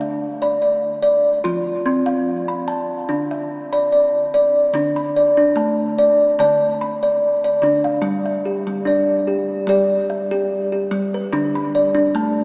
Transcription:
Already playing: D3 D4 F5
0.01 E5
0.42 D5 B5
0.62 D5
1.03 D5
1.44 F3 F4 C6
1.86 C4 C6
2.06 F5
2.48 B5
2.68 A5
3.09 D3 D4
3.31 E5
3.73 D5 B5
3.92 D5
4.34 D5
4.74 D3 D4
4.96 B5
5.16 D5
5.37 D4
5.56 A3 A5
5.98 D5
6.39 D3 D5 A5
6.81 B5
7.03 D5
7.44 D5
7.62 D3 D4
7.84 F5
8.02 G3
8.26 E5
8.45 G4
8.67 G3
8.85 D4 D5
9.28 G4
9.67 G3 G4 D5
10.10 E5
10.31 G4
10.72 G4
10.91 G3
11.14 B4
11.33 D3 D4
11.55 B5
11.75 D5
11.95 D4
12.15 A3 A5

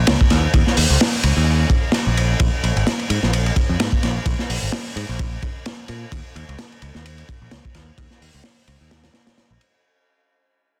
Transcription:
0.07 C#2, snare, ride
0.21 kick
0.30 D#2, snare, ride
0.54 D#2, kick, ride
0.67 snare
0.77 D#2, open hi-hat
0.90 C#2
1.01 snare, ride
1.23 C#2, ride
1.37 D#2
1.70 kick, ride
1.92 snare, ride
2.07 A#1
2.17 ride
2.40 A#1, kick, ride
2.63 A#1, ride
2.76 G#1, ride
2.87 snare, ride
2.99 ride
3.10 G#2, ride
3.23 A#1, snare
3.33 ride
3.46 ride
3.56 kick, ride
3.69 F2
3.80 G#2, snare, ride
3.92 kick
4.03 A#1, snare, ride
4.26 A#1, kick, ride
4.39 snare
4.49 A#1, open hi-hat
4.62 G#1
4.72 snare, ride
4.96 G#2, ride
5.09 A#1
5.19 kick, ride
5.42 kick, ride
5.66 snare, ride
5.88 A#2, ride
6.12 D#2, kick, ride
6.36 D#2, ride
6.48 C#2, ride
6.59 snare, ride
6.72 ride
6.82 C#2, ride
6.95 D#2, snare
7.06 ride
7.18 ride
7.29 kick, ride
7.42 A#1
7.51 C#2, snare, ride
7.65 kick
7.74 D#2, snare, ride
7.98 D#2, kick, ride
8.11 snare
8.21 D#2, open hi-hat
8.34 C#2
8.44 snare, ride
8.68 C#2, ride
8.81 D#2
8.91 snare, ride
9.04 snare, ride
9.14 snare, ride
9.27 snare, ride
9.38 snare, ride
9.50 A#1
9.61 ride

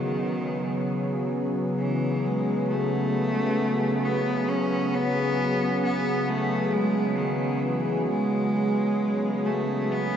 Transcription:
Already playing: C#3 D#3 F#3 B3 G#4
1.79 E3
2.26 G#3
2.69 A3
4.05 B3
4.49 C#4
4.95 B3
5.83 B3
6.28 A3
6.73 G#3
7.18 D#3
7.63 E3
8.08 G#3
9.45 A3
9.92 B3

